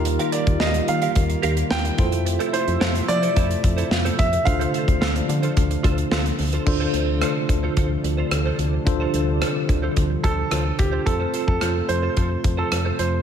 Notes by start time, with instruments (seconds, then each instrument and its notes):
Already playing: fm bass D#2, tine electric piano D#3 D#4 F4 G4 A#4, analog synth pad D#3 G3 A#3 F4
0.05 muted clean electric guitar stroke, closed hi-hat
0.19 clean electric guitar G4 A#4 F5, closed hi-hat
0.32 clean electric guitar G4 A#4 F5, grand piano D5, closed hi-hat
0.47 fm bass D#2, muted clean electric guitar stroke, kick, closed hi-hat
0.60 fm bass D#2, clean electric guitar G4 A#4 F5, grand piano D#5, snare
0.74 muted clean electric guitar stroke, closed hi-hat
0.88 fm bass D#3, grand piano F5, muted clean electric guitar stroke, closed hi-hat
1.02 clean electric guitar G4 A#4 F5, closed hi-hat
1.15 fm bass D#2, muted clean electric guitar stroke, kick, closed hi-hat
1.29 muted clean electric guitar stroke, closed hi-hat
1.42 fm bass D#2, clean electric guitar G4 A#4 F5, closed hi-hat
1.56 muted clean electric guitar stroke, closed hi-hat
1.70 fm bass D#2, grand piano G5, muted clean electric guitar stroke, snare
1.84 muted clean electric guitar stroke, closed hi-hat
1.98 fm bass F2, analog synth pad C3 F3 A3 E5, tine electric piano E4 F4 A4 C5, kick, closed hi-hat
2.12 muted clean electric guitar stroke, closed hi-hat
2.26 muted clean electric guitar stroke, closed hi-hat
2.39 clean electric guitar E4 A4 C5, closed hi-hat
2.53 clean electric guitar E4 A4 C5, grand piano C5, closed hi-hat
2.67 fm bass F2, muted clean electric guitar stroke, closed hi-hat
2.80 fm bass F2, clean electric guitar E4 A4 C5, snare
2.94 muted clean electric guitar stroke, closed hi-hat
3.08 fm bass F3, grand piano D5, muted clean electric guitar stroke, closed hi-hat
3.22 clean electric guitar E4 A4 C5, closed hi-hat
3.36 fm bass F2, clean electric guitar E4 A4 C5, kick, closed hi-hat
3.50 muted clean electric guitar stroke, closed hi-hat
3.64 fm bass F2, muted clean electric guitar stroke, kick, closed hi-hat
3.77 clean electric guitar E4 A4 C5, closed hi-hat
3.91 fm bass F2, muted clean electric guitar stroke, snare
4.05 clean electric guitar E4 A4 C5, closed hi-hat
4.18 fm bass F2, grand piano E5, muted clean electric guitar stroke, kick, closed hi-hat
4.32 muted clean electric guitar stroke, closed hi-hat
4.45 fm bass D2, tine electric piano D3 D4 F4 A4 C5, analog synth pad D4, grand piano F5, muted clean electric guitar stroke, kick, closed hi-hat
4.60 clean electric guitar F4 A4 C5, closed hi-hat
4.74 clean electric guitar F4 A4 C5, closed hi-hat
4.87 fm bass D2, muted clean electric guitar stroke, kick, closed hi-hat
5.01 fm bass D2, clean electric guitar F4 A4 C5, snare
5.15 muted clean electric guitar stroke, closed hi-hat
5.29 fm bass D3, muted clean electric guitar stroke, closed hi-hat
5.43 clean electric guitar F4 A4 C5, closed hi-hat
5.56 fm bass D2, muted clean electric guitar stroke, kick, closed hi-hat
5.70 muted clean electric guitar stroke, closed hi-hat
5.83 fm bass D2, clean electric guitar F4 A4 C5, kick, closed hi-hat
5.98 muted clean electric guitar stroke, closed hi-hat
6.11 fm bass D2, clean electric guitar F4 A4 C5, snare
6.25 muted clean electric guitar stroke, closed hi-hat
6.39 fm bass D2, muted clean electric guitar stroke, open hi-hat
6.53 clean electric guitar F4 A4 C5, closed hi-hat
6.66 fm bass D2, analog synth pad C3 F3 A3 D4, tine electric piano D3 D4 F4 A4 C5, kick, crash
6.80 clean electric guitar F4 A4 C5
6.94 fm bass D2, clean electric guitar F4 A4 C5, closed hi-hat
7.08 muted clean electric guitar stroke
7.21 clean electric guitar F4 A4 C5, cross-stick, closed hi-hat
7.36 muted clean electric guitar stroke
7.49 fm bass D2, muted clean electric guitar stroke, kick, closed hi-hat
7.63 clean electric guitar F4 A4 C5
7.77 fm bass D2, clean electric guitar F4 A4 C5, kick, closed hi-hat
7.90 muted clean electric guitar stroke
8.04 fm bass D2, muted clean electric guitar stroke, closed hi-hat
8.17 clean electric guitar F4 A4 C5
8.31 fm bass D2, muted clean electric guitar stroke, cross-stick, closed hi-hat
8.45 clean electric guitar F4 A4 C5
8.59 fm bass D2, muted clean electric guitar stroke, closed hi-hat
8.73 muted clean electric guitar stroke
8.85 fm bass D2, tine electric piano D3 D4 F4 A4 C5, analog synth pad G3, muted clean electric guitar stroke, kick, closed hi-hat
9.00 clean electric guitar F4 A4 C5
9.14 fm bass D2, clean electric guitar F4 A4 C5, closed hi-hat
9.28 muted clean electric guitar stroke
9.41 clean electric guitar F4 A4 C5, cross-stick, closed hi-hat
9.55 muted clean electric guitar stroke
9.69 fm bass D2, muted clean electric guitar stroke, kick, closed hi-hat
9.82 clean electric guitar F4 A4 C5
9.96 fm bass D2, muted clean electric guitar stroke, kick, closed hi-hat
10.10 muted clean electric guitar stroke
10.23 fm bass D2, clean electric guitar F4 A4 C5, grand piano A4, kick, closed hi-hat
10.38 muted clean electric guitar stroke
10.51 fm bass D2, clean electric guitar F4 A4 C5, cross-stick, closed hi-hat
10.65 muted clean electric guitar stroke
10.78 fm bass D2, grand piano G4, muted clean electric guitar stroke, kick, closed hi-hat
10.92 clean electric guitar F4 A4 C5
11.05 fm bass F2, analog synth pad C3 F3 A3 F4, tine electric piano C4 F4 A4 C5, grand piano A4, kick, closed hi-hat
11.20 clean electric guitar F4 A4 C5
11.33 clean electric guitar F4 A4 C5, closed hi-hat
11.47 fm bass F2, grand piano A4, muted clean electric guitar stroke, kick
11.61 fm bass F2, clean electric guitar F4 A4 C5, cross-stick, closed hi-hat
11.75 muted clean electric guitar stroke
11.89 fm bass F2, grand piano C5, muted clean electric guitar stroke, closed hi-hat
12.02 clean electric guitar F4 A4 C5
12.16 fm bass F2, clean electric guitar F4 A4 C5, kick, closed hi-hat
12.30 muted clean electric guitar stroke
12.44 fm bass F2, muted clean electric guitar stroke, kick, closed hi-hat
12.57 clean electric guitar F4 A4 C5, grand piano A4
12.72 fm bass F2, cross-stick, closed hi-hat
12.85 clean electric guitar F4 A4 C5
12.99 fm bass F2, grand piano C5, closed hi-hat
13.13 muted clean electric guitar stroke